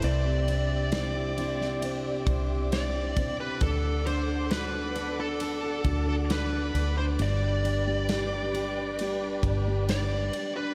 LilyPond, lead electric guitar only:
\new Staff \with { instrumentName = "Lead electric guitar" } { \time 4/4 \key g \major \tempo 4 = 67 d''2. d''8. b'16 | a'8 c''8 b'8. a'4 a'16 b'8. c''16 | d''2. d''8. b'16 | }